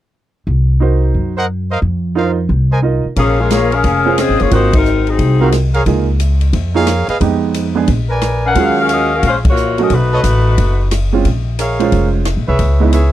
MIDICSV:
0, 0, Header, 1, 7, 480
1, 0, Start_track
1, 0, Key_signature, -5, "minor"
1, 0, Tempo, 336511
1, 680, Time_signature, 4, 2, 24, 8
1, 18714, End_track
2, 0, Start_track
2, 0, Title_t, "Trumpet section"
2, 0, Program_c, 0, 61
2, 1956, Note_on_c, 0, 70, 81
2, 1956, Note_on_c, 0, 72, 69
2, 1957, Note_on_c, 0, 78, 86
2, 1958, Note_on_c, 0, 75, 72
2, 2069, Note_off_c, 0, 70, 0
2, 2069, Note_off_c, 0, 72, 0
2, 2070, Note_off_c, 0, 75, 0
2, 2070, Note_off_c, 0, 78, 0
2, 2433, Note_on_c, 0, 75, 70
2, 2436, Note_on_c, 0, 77, 81
2, 2438, Note_on_c, 0, 70, 74
2, 2439, Note_on_c, 0, 72, 75
2, 2548, Note_off_c, 0, 75, 0
2, 2549, Note_off_c, 0, 77, 0
2, 2550, Note_off_c, 0, 70, 0
2, 2551, Note_off_c, 0, 72, 0
2, 3082, Note_on_c, 0, 75, 56
2, 3084, Note_on_c, 0, 72, 61
2, 3084, Note_on_c, 0, 77, 75
2, 3085, Note_on_c, 0, 70, 59
2, 3291, Note_off_c, 0, 75, 0
2, 3292, Note_off_c, 0, 77, 0
2, 3293, Note_off_c, 0, 70, 0
2, 3293, Note_off_c, 0, 72, 0
2, 3866, Note_on_c, 0, 72, 65
2, 3866, Note_on_c, 0, 75, 64
2, 3866, Note_on_c, 0, 80, 83
2, 3869, Note_on_c, 0, 70, 69
2, 3984, Note_off_c, 0, 72, 0
2, 3984, Note_off_c, 0, 75, 0
2, 3984, Note_off_c, 0, 80, 0
2, 3985, Note_off_c, 0, 70, 0
2, 4511, Note_on_c, 0, 77, 81
2, 4512, Note_on_c, 0, 68, 78
2, 4513, Note_on_c, 0, 70, 72
2, 4513, Note_on_c, 0, 73, 76
2, 5856, Note_off_c, 0, 68, 0
2, 5856, Note_off_c, 0, 77, 0
2, 5857, Note_off_c, 0, 70, 0
2, 5857, Note_off_c, 0, 73, 0
2, 7708, Note_on_c, 0, 77, 85
2, 7711, Note_on_c, 0, 70, 72
2, 7712, Note_on_c, 0, 72, 66
2, 7713, Note_on_c, 0, 66, 71
2, 7825, Note_off_c, 0, 77, 0
2, 7828, Note_off_c, 0, 70, 0
2, 7828, Note_off_c, 0, 72, 0
2, 7829, Note_off_c, 0, 66, 0
2, 8187, Note_on_c, 0, 68, 84
2, 8189, Note_on_c, 0, 70, 74
2, 8189, Note_on_c, 0, 77, 85
2, 8190, Note_on_c, 0, 73, 76
2, 8305, Note_off_c, 0, 68, 0
2, 8306, Note_off_c, 0, 70, 0
2, 8306, Note_off_c, 0, 77, 0
2, 8307, Note_off_c, 0, 73, 0
2, 9623, Note_on_c, 0, 70, 76
2, 9623, Note_on_c, 0, 73, 74
2, 9623, Note_on_c, 0, 77, 97
2, 9625, Note_on_c, 0, 68, 84
2, 10078, Note_off_c, 0, 73, 0
2, 10078, Note_off_c, 0, 77, 0
2, 10079, Note_off_c, 0, 70, 0
2, 10080, Note_off_c, 0, 68, 0
2, 10106, Note_on_c, 0, 75, 79
2, 10108, Note_on_c, 0, 77, 82
2, 10109, Note_on_c, 0, 68, 78
2, 10109, Note_on_c, 0, 71, 73
2, 10225, Note_off_c, 0, 75, 0
2, 10226, Note_off_c, 0, 68, 0
2, 10226, Note_off_c, 0, 71, 0
2, 10226, Note_off_c, 0, 77, 0
2, 11544, Note_on_c, 0, 70, 79
2, 11547, Note_on_c, 0, 71, 72
2, 11548, Note_on_c, 0, 80, 86
2, 11549, Note_on_c, 0, 74, 68
2, 12166, Note_off_c, 0, 70, 0
2, 12168, Note_off_c, 0, 71, 0
2, 12168, Note_off_c, 0, 80, 0
2, 12169, Note_off_c, 0, 74, 0
2, 12200, Note_on_c, 0, 77, 95
2, 12201, Note_on_c, 0, 68, 76
2, 12203, Note_on_c, 0, 73, 70
2, 13541, Note_off_c, 0, 68, 0
2, 13541, Note_off_c, 0, 77, 0
2, 13542, Note_off_c, 0, 73, 0
2, 14443, Note_on_c, 0, 69, 76
2, 14445, Note_on_c, 0, 71, 70
2, 14447, Note_on_c, 0, 73, 68
2, 14447, Note_on_c, 0, 75, 84
2, 14555, Note_off_c, 0, 69, 0
2, 14556, Note_off_c, 0, 71, 0
2, 14558, Note_off_c, 0, 73, 0
2, 14558, Note_off_c, 0, 75, 0
2, 16531, Note_on_c, 0, 68, 69
2, 16531, Note_on_c, 0, 70, 61
2, 16532, Note_on_c, 0, 73, 69
2, 16532, Note_on_c, 0, 77, 77
2, 17254, Note_off_c, 0, 68, 0
2, 17255, Note_off_c, 0, 70, 0
2, 17255, Note_off_c, 0, 73, 0
2, 17255, Note_off_c, 0, 77, 0
2, 17786, Note_on_c, 0, 68, 75
2, 17787, Note_on_c, 0, 71, 73
2, 17789, Note_on_c, 0, 73, 69
2, 17790, Note_on_c, 0, 76, 87
2, 18405, Note_off_c, 0, 68, 0
2, 18405, Note_off_c, 0, 71, 0
2, 18406, Note_off_c, 0, 73, 0
2, 18407, Note_off_c, 0, 76, 0
2, 18441, Note_on_c, 0, 76, 84
2, 18442, Note_on_c, 0, 68, 74
2, 18442, Note_on_c, 0, 71, 64
2, 18442, Note_on_c, 0, 73, 61
2, 18714, Note_off_c, 0, 68, 0
2, 18714, Note_off_c, 0, 71, 0
2, 18714, Note_off_c, 0, 73, 0
2, 18714, Note_off_c, 0, 76, 0
2, 18714, End_track
3, 0, Start_track
3, 0, Title_t, "Saxophone section"
3, 0, Program_c, 1, 65
3, 4543, Note_on_c, 1, 58, 67
3, 4547, Note_on_c, 1, 68, 83
3, 4550, Note_on_c, 1, 61, 68
3, 4554, Note_on_c, 1, 53, 66
3, 4822, Note_off_c, 1, 58, 0
3, 4824, Note_off_c, 1, 68, 0
3, 4826, Note_off_c, 1, 61, 0
3, 4828, Note_off_c, 1, 53, 0
3, 4852, Note_on_c, 1, 56, 67
3, 4859, Note_on_c, 1, 61, 59
3, 4859, Note_on_c, 1, 65, 59
3, 4862, Note_on_c, 1, 70, 74
3, 5000, Note_off_c, 1, 65, 0
3, 5013, Note_off_c, 1, 56, 0
3, 5014, Note_on_c, 1, 73, 79
3, 5017, Note_off_c, 1, 61, 0
3, 5017, Note_on_c, 1, 65, 72
3, 5018, Note_off_c, 1, 70, 0
3, 5018, Note_on_c, 1, 58, 81
3, 5020, Note_on_c, 1, 68, 75
3, 5303, Note_off_c, 1, 68, 0
3, 5319, Note_off_c, 1, 73, 0
3, 5320, Note_off_c, 1, 58, 0
3, 5320, Note_off_c, 1, 65, 0
3, 5320, Note_on_c, 1, 68, 85
3, 5321, Note_on_c, 1, 70, 77
3, 5332, Note_on_c, 1, 61, 81
3, 5332, Note_on_c, 1, 77, 91
3, 5967, Note_off_c, 1, 68, 0
3, 5968, Note_off_c, 1, 70, 0
3, 5973, Note_off_c, 1, 61, 0
3, 5974, Note_off_c, 1, 77, 0
3, 5987, Note_on_c, 1, 65, 72
3, 5991, Note_on_c, 1, 60, 73
3, 5992, Note_on_c, 1, 75, 82
3, 5999, Note_on_c, 1, 68, 71
3, 6268, Note_off_c, 1, 68, 0
3, 6277, Note_off_c, 1, 65, 0
3, 6285, Note_on_c, 1, 68, 70
3, 6286, Note_on_c, 1, 73, 82
3, 6287, Note_off_c, 1, 60, 0
3, 6288, Note_off_c, 1, 75, 0
3, 6289, Note_on_c, 1, 58, 65
3, 6294, Note_on_c, 1, 65, 68
3, 6448, Note_off_c, 1, 58, 0
3, 6450, Note_off_c, 1, 68, 0
3, 6451, Note_off_c, 1, 73, 0
3, 6455, Note_off_c, 1, 65, 0
3, 6460, Note_on_c, 1, 63, 71
3, 6465, Note_on_c, 1, 58, 68
3, 6466, Note_on_c, 1, 66, 69
3, 6467, Note_on_c, 1, 72, 80
3, 6741, Note_off_c, 1, 63, 0
3, 6744, Note_off_c, 1, 58, 0
3, 6744, Note_off_c, 1, 66, 0
3, 6744, Note_off_c, 1, 72, 0
3, 6776, Note_on_c, 1, 54, 68
3, 6779, Note_on_c, 1, 63, 69
3, 6783, Note_on_c, 1, 60, 69
3, 6784, Note_on_c, 1, 70, 75
3, 7212, Note_off_c, 1, 54, 0
3, 7214, Note_off_c, 1, 63, 0
3, 7216, Note_off_c, 1, 60, 0
3, 7217, Note_off_c, 1, 70, 0
3, 7259, Note_on_c, 1, 60, 61
3, 7261, Note_on_c, 1, 68, 70
3, 7263, Note_on_c, 1, 54, 58
3, 7263, Note_on_c, 1, 63, 61
3, 7897, Note_off_c, 1, 60, 0
3, 7899, Note_off_c, 1, 63, 0
3, 7899, Note_off_c, 1, 68, 0
3, 7900, Note_off_c, 1, 54, 0
3, 12070, Note_on_c, 1, 61, 80
3, 12073, Note_on_c, 1, 77, 75
3, 12074, Note_on_c, 1, 70, 73
3, 12078, Note_on_c, 1, 78, 93
3, 12501, Note_off_c, 1, 61, 0
3, 12502, Note_off_c, 1, 77, 0
3, 12503, Note_off_c, 1, 70, 0
3, 12505, Note_off_c, 1, 78, 0
3, 12550, Note_on_c, 1, 61, 73
3, 12556, Note_on_c, 1, 77, 83
3, 12558, Note_on_c, 1, 66, 75
3, 12565, Note_on_c, 1, 70, 72
3, 12704, Note_off_c, 1, 61, 0
3, 12707, Note_off_c, 1, 77, 0
3, 12708, Note_off_c, 1, 66, 0
3, 12711, Note_off_c, 1, 70, 0
3, 12729, Note_on_c, 1, 66, 75
3, 12735, Note_on_c, 1, 70, 73
3, 12742, Note_on_c, 1, 61, 74
3, 12744, Note_on_c, 1, 75, 79
3, 12997, Note_off_c, 1, 66, 0
3, 13000, Note_off_c, 1, 70, 0
3, 13004, Note_off_c, 1, 61, 0
3, 13005, Note_off_c, 1, 75, 0
3, 13056, Note_on_c, 1, 61, 69
3, 13058, Note_on_c, 1, 77, 82
3, 13064, Note_on_c, 1, 66, 74
3, 13065, Note_on_c, 1, 70, 70
3, 13197, Note_off_c, 1, 61, 0
3, 13198, Note_off_c, 1, 77, 0
3, 13200, Note_off_c, 1, 66, 0
3, 13201, Note_off_c, 1, 70, 0
3, 13224, Note_on_c, 1, 61, 72
3, 13224, Note_on_c, 1, 72, 75
3, 13229, Note_on_c, 1, 56, 59
3, 13234, Note_on_c, 1, 65, 64
3, 13350, Note_off_c, 1, 61, 0
3, 13350, Note_off_c, 1, 72, 0
3, 13354, Note_off_c, 1, 56, 0
3, 13358, Note_off_c, 1, 65, 0
3, 13537, Note_on_c, 1, 65, 75
3, 13540, Note_on_c, 1, 73, 83
3, 13545, Note_on_c, 1, 58, 72
3, 13545, Note_on_c, 1, 66, 70
3, 13955, Note_off_c, 1, 65, 0
3, 13956, Note_off_c, 1, 73, 0
3, 13959, Note_off_c, 1, 58, 0
3, 13959, Note_off_c, 1, 66, 0
3, 14006, Note_on_c, 1, 61, 63
3, 14008, Note_on_c, 1, 70, 71
3, 14011, Note_on_c, 1, 75, 77
3, 14014, Note_on_c, 1, 66, 61
3, 14151, Note_off_c, 1, 61, 0
3, 14152, Note_off_c, 1, 70, 0
3, 14153, Note_off_c, 1, 75, 0
3, 14155, Note_off_c, 1, 66, 0
3, 14176, Note_on_c, 1, 71, 77
3, 14183, Note_on_c, 1, 57, 60
3, 14185, Note_on_c, 1, 63, 58
3, 14188, Note_on_c, 1, 66, 65
3, 15590, Note_off_c, 1, 71, 0
3, 15594, Note_off_c, 1, 57, 0
3, 15595, Note_off_c, 1, 63, 0
3, 15596, Note_off_c, 1, 66, 0
3, 18714, End_track
4, 0, Start_track
4, 0, Title_t, "Grand piano"
4, 0, Program_c, 2, 0
4, 1143, Note_on_c, 2, 63, 47
4, 1155, Note_on_c, 2, 66, 41
4, 1162, Note_on_c, 2, 70, 40
4, 1170, Note_on_c, 2, 72, 51
4, 1880, Note_off_c, 2, 63, 0
4, 1886, Note_off_c, 2, 66, 0
4, 1889, Note_off_c, 2, 70, 0
4, 1894, Note_off_c, 2, 72, 0
4, 3071, Note_on_c, 2, 63, 54
4, 3074, Note_on_c, 2, 65, 51
4, 3082, Note_on_c, 2, 70, 46
4, 3096, Note_on_c, 2, 72, 58
4, 3355, Note_off_c, 2, 63, 0
4, 3357, Note_off_c, 2, 65, 0
4, 3361, Note_off_c, 2, 70, 0
4, 3368, Note_off_c, 2, 72, 0
4, 4026, Note_on_c, 2, 63, 47
4, 4037, Note_on_c, 2, 65, 39
4, 4044, Note_on_c, 2, 70, 42
4, 4052, Note_on_c, 2, 75, 46
4, 4313, Note_off_c, 2, 63, 0
4, 4319, Note_off_c, 2, 65, 0
4, 4322, Note_off_c, 2, 70, 0
4, 4326, Note_off_c, 2, 75, 0
4, 5781, Note_on_c, 2, 61, 53
4, 5786, Note_on_c, 2, 65, 50
4, 5799, Note_on_c, 2, 68, 52
4, 5807, Note_on_c, 2, 72, 59
4, 6404, Note_off_c, 2, 61, 0
4, 6407, Note_off_c, 2, 65, 0
4, 6413, Note_off_c, 2, 68, 0
4, 6417, Note_off_c, 2, 72, 0
4, 6425, Note_on_c, 2, 60, 47
4, 6433, Note_on_c, 2, 65, 40
4, 6445, Note_on_c, 2, 66, 45
4, 6449, Note_on_c, 2, 70, 50
4, 6714, Note_off_c, 2, 60, 0
4, 6717, Note_off_c, 2, 65, 0
4, 6723, Note_off_c, 2, 66, 0
4, 6725, Note_off_c, 2, 70, 0
4, 7705, Note_on_c, 2, 60, 52
4, 7714, Note_on_c, 2, 65, 45
4, 7716, Note_on_c, 2, 66, 51
4, 7730, Note_on_c, 2, 70, 59
4, 7863, Note_off_c, 2, 60, 0
4, 7868, Note_off_c, 2, 65, 0
4, 7869, Note_off_c, 2, 66, 0
4, 7876, Note_off_c, 2, 70, 0
4, 8356, Note_on_c, 2, 58, 44
4, 8365, Note_on_c, 2, 63, 38
4, 8371, Note_on_c, 2, 65, 43
4, 8380, Note_on_c, 2, 68, 48
4, 8640, Note_off_c, 2, 58, 0
4, 8644, Note_off_c, 2, 63, 0
4, 8647, Note_off_c, 2, 65, 0
4, 8652, Note_off_c, 2, 68, 0
4, 9621, Note_on_c, 2, 58, 54
4, 9627, Note_on_c, 2, 63, 54
4, 9633, Note_on_c, 2, 65, 50
4, 9638, Note_on_c, 2, 68, 64
4, 9781, Note_off_c, 2, 58, 0
4, 9785, Note_off_c, 2, 63, 0
4, 9788, Note_off_c, 2, 65, 0
4, 9790, Note_off_c, 2, 68, 0
4, 10274, Note_on_c, 2, 56, 54
4, 10279, Note_on_c, 2, 59, 45
4, 10285, Note_on_c, 2, 63, 53
4, 10296, Note_on_c, 2, 67, 56
4, 11008, Note_off_c, 2, 56, 0
4, 11010, Note_off_c, 2, 59, 0
4, 11014, Note_off_c, 2, 63, 0
4, 11019, Note_off_c, 2, 67, 0
4, 11052, Note_on_c, 2, 56, 50
4, 11061, Note_on_c, 2, 59, 45
4, 11072, Note_on_c, 2, 62, 44
4, 11080, Note_on_c, 2, 68, 52
4, 11217, Note_off_c, 2, 56, 0
4, 11222, Note_off_c, 2, 59, 0
4, 11227, Note_off_c, 2, 62, 0
4, 11231, Note_off_c, 2, 68, 0
4, 12200, Note_on_c, 2, 54, 44
4, 12204, Note_on_c, 2, 56, 42
4, 12212, Note_on_c, 2, 61, 42
4, 12220, Note_on_c, 2, 65, 47
4, 12931, Note_off_c, 2, 54, 0
4, 12933, Note_off_c, 2, 56, 0
4, 12937, Note_off_c, 2, 61, 0
4, 12941, Note_off_c, 2, 65, 0
4, 13951, Note_on_c, 2, 54, 55
4, 13958, Note_on_c, 2, 57, 46
4, 13968, Note_on_c, 2, 61, 44
4, 13974, Note_on_c, 2, 66, 61
4, 14107, Note_off_c, 2, 54, 0
4, 14110, Note_off_c, 2, 57, 0
4, 14115, Note_off_c, 2, 61, 0
4, 14118, Note_off_c, 2, 66, 0
4, 15869, Note_on_c, 2, 56, 48
4, 15875, Note_on_c, 2, 60, 50
4, 15883, Note_on_c, 2, 61, 51
4, 15894, Note_on_c, 2, 65, 56
4, 16025, Note_off_c, 2, 56, 0
4, 16028, Note_off_c, 2, 60, 0
4, 16032, Note_off_c, 2, 61, 0
4, 16037, Note_off_c, 2, 65, 0
4, 16824, Note_on_c, 2, 56, 59
4, 16832, Note_on_c, 2, 72, 50
4, 16841, Note_on_c, 2, 61, 50
4, 16847, Note_on_c, 2, 65, 58
4, 17444, Note_off_c, 2, 56, 0
4, 17448, Note_off_c, 2, 72, 0
4, 17453, Note_off_c, 2, 61, 0
4, 17456, Note_off_c, 2, 65, 0
4, 18259, Note_on_c, 2, 56, 57
4, 18270, Note_on_c, 2, 59, 46
4, 18278, Note_on_c, 2, 63, 49
4, 18283, Note_on_c, 2, 64, 59
4, 18418, Note_off_c, 2, 56, 0
4, 18424, Note_off_c, 2, 59, 0
4, 18428, Note_off_c, 2, 63, 0
4, 18431, Note_off_c, 2, 64, 0
4, 18714, End_track
5, 0, Start_track
5, 0, Title_t, "Upright bass"
5, 0, Program_c, 3, 32
5, 668, Note_on_c, 3, 36, 75
5, 1586, Note_off_c, 3, 36, 0
5, 1632, Note_on_c, 3, 42, 64
5, 2549, Note_off_c, 3, 42, 0
5, 2596, Note_on_c, 3, 41, 76
5, 3511, Note_off_c, 3, 41, 0
5, 3552, Note_on_c, 3, 36, 75
5, 4292, Note_off_c, 3, 36, 0
5, 4514, Note_on_c, 3, 34, 75
5, 5431, Note_off_c, 3, 34, 0
5, 5479, Note_on_c, 3, 29, 71
5, 6077, Note_off_c, 3, 29, 0
5, 6118, Note_on_c, 3, 32, 59
5, 6270, Note_off_c, 3, 32, 0
5, 6288, Note_on_c, 3, 30, 53
5, 6435, Note_off_c, 3, 30, 0
5, 6442, Note_on_c, 3, 32, 75
5, 7356, Note_off_c, 3, 32, 0
5, 7399, Note_on_c, 3, 36, 76
5, 8314, Note_off_c, 3, 36, 0
5, 8359, Note_on_c, 3, 37, 87
5, 9275, Note_off_c, 3, 37, 0
5, 9314, Note_on_c, 3, 41, 77
5, 10054, Note_off_c, 3, 41, 0
5, 10282, Note_on_c, 3, 41, 75
5, 11196, Note_off_c, 3, 41, 0
5, 11241, Note_on_c, 3, 34, 75
5, 12156, Note_off_c, 3, 34, 0
5, 12201, Note_on_c, 3, 39, 79
5, 13116, Note_off_c, 3, 39, 0
5, 13166, Note_on_c, 3, 34, 67
5, 14078, Note_off_c, 3, 34, 0
5, 14125, Note_on_c, 3, 35, 80
5, 14572, Note_off_c, 3, 35, 0
5, 14601, Note_on_c, 3, 33, 72
5, 15049, Note_off_c, 3, 33, 0
5, 15091, Note_on_c, 3, 30, 78
5, 16000, Note_off_c, 3, 30, 0
5, 16045, Note_on_c, 3, 34, 78
5, 16956, Note_off_c, 3, 34, 0
5, 17007, Note_on_c, 3, 29, 78
5, 17600, Note_off_c, 3, 29, 0
5, 17645, Note_on_c, 3, 34, 60
5, 17793, Note_off_c, 3, 34, 0
5, 17805, Note_on_c, 3, 36, 62
5, 17949, Note_off_c, 3, 36, 0
5, 17958, Note_on_c, 3, 37, 77
5, 18714, Note_off_c, 3, 37, 0
5, 18714, End_track
6, 0, Start_track
6, 0, Title_t, "Muted upright bass strokes"
6, 4347, Note_on_c, 9, 29, 32
6, 4490, Note_off_c, 9, 29, 0
6, 10103, Note_on_c, 9, 29, 35
6, 10246, Note_off_c, 9, 29, 0
6, 18714, End_track
7, 0, Start_track
7, 0, Title_t, "Drums"
7, 4513, Note_on_c, 9, 51, 55
7, 4517, Note_on_c, 9, 36, 31
7, 4655, Note_off_c, 9, 51, 0
7, 4660, Note_off_c, 9, 36, 0
7, 4999, Note_on_c, 9, 44, 52
7, 4999, Note_on_c, 9, 51, 59
7, 5003, Note_on_c, 9, 38, 34
7, 5142, Note_off_c, 9, 44, 0
7, 5142, Note_off_c, 9, 51, 0
7, 5146, Note_off_c, 9, 38, 0
7, 5307, Note_on_c, 9, 51, 37
7, 5449, Note_off_c, 9, 51, 0
7, 5474, Note_on_c, 9, 51, 49
7, 5480, Note_on_c, 9, 36, 33
7, 5616, Note_off_c, 9, 51, 0
7, 5622, Note_off_c, 9, 36, 0
7, 5959, Note_on_c, 9, 44, 49
7, 5959, Note_on_c, 9, 51, 66
7, 5963, Note_on_c, 9, 37, 59
7, 6102, Note_off_c, 9, 44, 0
7, 6102, Note_off_c, 9, 51, 0
7, 6106, Note_off_c, 9, 37, 0
7, 6272, Note_on_c, 9, 51, 37
7, 6414, Note_off_c, 9, 51, 0
7, 6439, Note_on_c, 9, 51, 55
7, 6442, Note_on_c, 9, 36, 29
7, 6582, Note_off_c, 9, 51, 0
7, 6585, Note_off_c, 9, 36, 0
7, 6751, Note_on_c, 9, 51, 70
7, 6753, Note_on_c, 9, 36, 71
7, 6894, Note_off_c, 9, 51, 0
7, 6896, Note_off_c, 9, 36, 0
7, 6921, Note_on_c, 9, 44, 47
7, 7064, Note_off_c, 9, 44, 0
7, 7230, Note_on_c, 9, 51, 39
7, 7372, Note_off_c, 9, 51, 0
7, 7399, Note_on_c, 9, 51, 58
7, 7403, Note_on_c, 9, 36, 28
7, 7542, Note_off_c, 9, 51, 0
7, 7545, Note_off_c, 9, 36, 0
7, 7879, Note_on_c, 9, 44, 60
7, 7879, Note_on_c, 9, 51, 67
7, 7883, Note_on_c, 9, 37, 63
7, 8022, Note_off_c, 9, 44, 0
7, 8022, Note_off_c, 9, 51, 0
7, 8026, Note_off_c, 9, 37, 0
7, 8193, Note_on_c, 9, 51, 38
7, 8335, Note_off_c, 9, 51, 0
7, 8359, Note_on_c, 9, 51, 51
7, 8362, Note_on_c, 9, 36, 31
7, 8502, Note_off_c, 9, 51, 0
7, 8505, Note_off_c, 9, 36, 0
7, 8838, Note_on_c, 9, 44, 52
7, 8838, Note_on_c, 9, 51, 63
7, 8981, Note_off_c, 9, 44, 0
7, 8981, Note_off_c, 9, 51, 0
7, 9142, Note_on_c, 9, 51, 41
7, 9285, Note_off_c, 9, 51, 0
7, 9317, Note_on_c, 9, 51, 51
7, 9318, Note_on_c, 9, 36, 28
7, 9460, Note_off_c, 9, 51, 0
7, 9461, Note_off_c, 9, 36, 0
7, 9795, Note_on_c, 9, 44, 62
7, 9795, Note_on_c, 9, 51, 65
7, 9799, Note_on_c, 9, 37, 61
7, 9938, Note_off_c, 9, 44, 0
7, 9938, Note_off_c, 9, 51, 0
7, 9942, Note_off_c, 9, 37, 0
7, 10108, Note_on_c, 9, 51, 41
7, 10250, Note_off_c, 9, 51, 0
7, 10280, Note_on_c, 9, 36, 29
7, 10281, Note_on_c, 9, 51, 53
7, 10422, Note_off_c, 9, 36, 0
7, 10424, Note_off_c, 9, 51, 0
7, 10759, Note_on_c, 9, 44, 51
7, 10759, Note_on_c, 9, 51, 63
7, 10902, Note_off_c, 9, 44, 0
7, 10902, Note_off_c, 9, 51, 0
7, 11234, Note_on_c, 9, 51, 55
7, 11240, Note_on_c, 9, 36, 31
7, 11377, Note_off_c, 9, 51, 0
7, 11382, Note_off_c, 9, 36, 0
7, 11718, Note_on_c, 9, 44, 47
7, 11718, Note_on_c, 9, 51, 60
7, 11722, Note_on_c, 9, 37, 62
7, 11860, Note_off_c, 9, 44, 0
7, 11860, Note_off_c, 9, 51, 0
7, 11865, Note_off_c, 9, 37, 0
7, 12201, Note_on_c, 9, 51, 59
7, 12203, Note_on_c, 9, 36, 31
7, 12343, Note_off_c, 9, 51, 0
7, 12345, Note_off_c, 9, 36, 0
7, 12680, Note_on_c, 9, 44, 48
7, 12680, Note_on_c, 9, 51, 62
7, 12822, Note_off_c, 9, 44, 0
7, 12822, Note_off_c, 9, 51, 0
7, 13163, Note_on_c, 9, 51, 58
7, 13166, Note_on_c, 9, 36, 31
7, 13305, Note_off_c, 9, 51, 0
7, 13309, Note_off_c, 9, 36, 0
7, 13476, Note_on_c, 9, 51, 66
7, 13478, Note_on_c, 9, 36, 75
7, 13619, Note_off_c, 9, 51, 0
7, 13621, Note_off_c, 9, 36, 0
7, 13642, Note_on_c, 9, 44, 52
7, 13785, Note_off_c, 9, 44, 0
7, 13951, Note_on_c, 9, 51, 40
7, 14094, Note_off_c, 9, 51, 0
7, 14120, Note_on_c, 9, 51, 58
7, 14126, Note_on_c, 9, 36, 31
7, 14263, Note_off_c, 9, 51, 0
7, 14269, Note_off_c, 9, 36, 0
7, 14602, Note_on_c, 9, 44, 58
7, 14602, Note_on_c, 9, 51, 64
7, 14745, Note_off_c, 9, 44, 0
7, 14745, Note_off_c, 9, 51, 0
7, 15088, Note_on_c, 9, 51, 64
7, 15089, Note_on_c, 9, 36, 30
7, 15231, Note_off_c, 9, 51, 0
7, 15232, Note_off_c, 9, 36, 0
7, 15564, Note_on_c, 9, 44, 58
7, 15564, Note_on_c, 9, 51, 73
7, 15569, Note_on_c, 9, 37, 59
7, 15707, Note_off_c, 9, 44, 0
7, 15707, Note_off_c, 9, 51, 0
7, 15711, Note_off_c, 9, 37, 0
7, 16046, Note_on_c, 9, 51, 54
7, 16048, Note_on_c, 9, 36, 31
7, 16188, Note_off_c, 9, 51, 0
7, 16191, Note_off_c, 9, 36, 0
7, 16528, Note_on_c, 9, 44, 56
7, 16528, Note_on_c, 9, 51, 62
7, 16671, Note_off_c, 9, 44, 0
7, 16671, Note_off_c, 9, 51, 0
7, 16833, Note_on_c, 9, 51, 45
7, 16976, Note_off_c, 9, 51, 0
7, 17003, Note_on_c, 9, 51, 54
7, 17004, Note_on_c, 9, 36, 28
7, 17146, Note_off_c, 9, 36, 0
7, 17146, Note_off_c, 9, 51, 0
7, 17477, Note_on_c, 9, 44, 51
7, 17477, Note_on_c, 9, 51, 68
7, 17481, Note_on_c, 9, 37, 63
7, 17619, Note_off_c, 9, 44, 0
7, 17619, Note_off_c, 9, 51, 0
7, 17624, Note_off_c, 9, 37, 0
7, 17956, Note_on_c, 9, 51, 55
7, 17959, Note_on_c, 9, 36, 28
7, 18099, Note_off_c, 9, 51, 0
7, 18102, Note_off_c, 9, 36, 0
7, 18438, Note_on_c, 9, 44, 45
7, 18438, Note_on_c, 9, 51, 62
7, 18580, Note_off_c, 9, 44, 0
7, 18580, Note_off_c, 9, 51, 0
7, 18714, End_track
0, 0, End_of_file